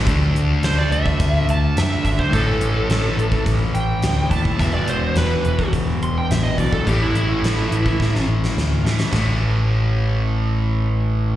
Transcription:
<<
  \new Staff \with { instrumentName = "Lead electric guitar" } { \time 4/4 \key d \lydian \tempo 4 = 106 r4 c''16 d''16 e''4 a''8 e''8 e''16 c''16 | a'2 r8 g''4 a''8 | e''16 d''16 c''8 b'4 r8 c'''16 g''16 e''16 dis''16 d''16 a'16 | g'16 e'16 e'2 r4. |
r1 | }
  \new Staff \with { instrumentName = "Distorted electric guitar" } { \clef bass \time 4/4 \key d \lydian <d a d'>1 | <a, e a>1 | <e, b, e>1 | <a, e a>1 |
<a, e a>1 | }
  \new Staff \with { instrumentName = "Overdriven electric guitar" } { \clef bass \time 4/4 \key d \lydian <d a d'>2.~ <d a d'>8 <d a d'>8 | <a, e a>2.~ <a, e a>8 <a, e a>8 | <e, b, e>2.~ <e, b, e>8 <e, b, e>8 | <a, e a>2.~ <a, e a>8 <a, e a>8 |
<a, e a>1 | }
  \new Staff \with { instrumentName = "Picked electric bass" } { \clef bass \time 4/4 \key d \lydian d,8 d,8 d,8 d,8 d,8 d,8 fis,8 gis,,8 | a,,8 a,,8 a,,8 a,,8 a,,8 a,,8 d,8 dis,8 | e,,8 e,,8 e,,8 e,,8 e,,8 e,,8 a,,8 b,,8 | a,,8 a,,8 a,,8 a,,8 a,,8 a,,8 d,8 a,8 |
a,,1 | }
  \new DrumStaff \with { instrumentName = "Drums" } \drummode { \time 4/4 <hh bd>8 hh8 <hh sn>8 hh16 bd16 <hh bd>8 hh8 <hh sn>8 <hh bd>16 bd16 | <hh bd>8 hh8 <hh sn>8 hh16 bd16 <hh bd>8 hh8 <hh sn>8 <hh bd>16 bd16 | <hh bd>8 hh8 <hh sn>8 hh16 bd16 <hh bd>8 hh8 <hh sn>8 <hh bd>16 bd16 | <hh bd>8 hh8 <hh sn>8 hh16 bd16 <bd sn>16 sn8 sn16 sn8 sn16 sn16 |
<cymc sn tomfh>4 r4 r4 r4 | }
>>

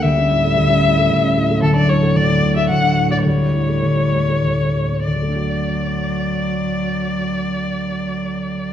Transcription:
<<
  \new Staff \with { instrumentName = "Violin" } { \time 3/4 \key d \major \tempo 4 = 100 e''2. | a'16 d''16 cis''8 d''8. e''16 fis''8. d''16 | cis''2. | d''2.~ |
d''2. | }
  \new Staff \with { instrumentName = "Grand piano" } { \time 3/4 \key d \major d,16 cis'16 a,16 a16 d,16 cis'16 a,16 a16 d,16 cis'16 a,16 a16 | d,16 d'16 a,16 a16 d,16 d'16 a,16 a16 d,16 d'16 a,16 a16 | d,16 e'16 a,16 a16 d,16 e'16 a,16 a16 d,16 e'16 a,16 a16 | <d, d a d' fis' d''>2.~ |
<d, d a d' fis' d''>2. | }
  \new Staff \with { instrumentName = "Cello" } { \clef bass \time 3/4 \key d \major g2. | fis2. | g2~ g8 r8 | fis2.~ |
fis2. | }
>>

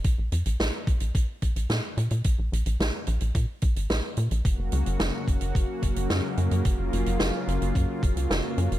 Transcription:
<<
  \new Staff \with { instrumentName = "Analog synth pad" } { \time 4/4 \key bes \minor \tempo 4 = 109 << { r1 | r1 | ges'1 | f'1 | } \\ { r1 | r1 | <des ges bes>1~ | <des ges bes>1 | } >> }
  \new Staff \with { instrumentName = "Analog synth bass" } { \clef bass \time 4/4 \key bes \minor bes,,16 bes,,16 f,16 bes,,16 bes,,16 r16 bes,,16 bes,,16 bes,,16 r16 bes,,16 bes,,16 bes,16 r16 bes,16 bes,16 | bes,,16 bes,,16 bes,,16 bes,,16 bes,,16 r16 bes,,16 bes,,16 bes,16 r16 bes,,16 aes,,16 bes,,16 r16 bes,16 bes,,16 | ges,,16 ges,,16 des,16 ges,,16 ges,,16 r16 ges,,16 ges,,16 ges,,16 r16 ges,,16 ges,,16 ges,16 r16 ges,16 ges,16 | ges,,16 ges,,16 ges,,16 ges,,16 ges,,16 r16 ges,,16 ges,,16 ges,16 r16 ges,,16 des,16 ges,,16 r16 ges,16 ges,,16 | }
  \new DrumStaff \with { instrumentName = "Drums" } \drummode { \time 4/4 <hh bd>8 hh16 hh16 <hh sn>8 <hh bd>16 hh16 <hh bd>8 <hh bd>16 hh16 <hh sn>8 hh16 hh16 | <hh bd>8 hh16 hh16 <hh sn>8 hh16 hh16 <hh bd>8 <hh bd>16 hh16 <hh sn>8 hh16 hh16 | <hh bd>8 hh16 hh16 <hh sn>8 <hh bd>16 hh16 <hh bd>8 <hh bd>16 hh16 <hh sn>8 hh16 hh16 | <hh bd>8 hh16 hh16 <hh sn>8 hh16 hh16 <hh bd>8 <hh bd>16 hh16 <hh sn>8 hh16 hh16 | }
>>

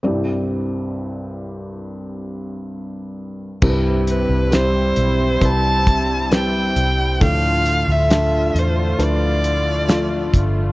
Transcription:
<<
  \new Staff \with { instrumentName = "Violin" } { \time 4/4 \key c \major \tempo 4 = 67 r1 | r8 b'8 c''4 a''4 g''4 | f''8. e''8. c''8 d''4. r8 | }
  \new Staff \with { instrumentName = "Felt piano" } { \time 4/4 \key c \major <c' e' g' d''>1 | <g c' e' bes' b'>4 <g c' e' c''>4 <g c' e' b'>4 <g c' e' b'>4 | <f a d' a'>4 <a d' f' a'>4 <f a d' b'>4 <f a d' f'>4 | }
  \new Staff \with { instrumentName = "Felt piano" } { \clef bass \time 4/4 \key c \major <c, g,>1 | g,4. r2 r8 | a,4. r2 r8 | }
  \new Staff \with { instrumentName = "Analog synth pad" } { \time 4/4 \key c \major r1 | <g c' e'>1 | <d a f'>1 | }
  \new Staff \with { instrumentName = "Fingered electric bass" } { \clef bass \time 4/4 \key c \major r1 | c,8. c,8. b,,8 c,4. c,8 | d,8. d,8. e,8 d,4. g,,8 | }
  \new DrumStaff \with { instrumentName = "Drums" } \drummode { \time 4/4 r4 r4 r4 r4 | <cymc bd>8 hh8 <hh sn>8 hh8 <hh bd>8 <hh bd>8 <hh sn>8 hh8 | <hh bd>8 hh8 <hh sn>8 hh8 hh8 hh8 <hh sn>8 <hh bd>8 | }
>>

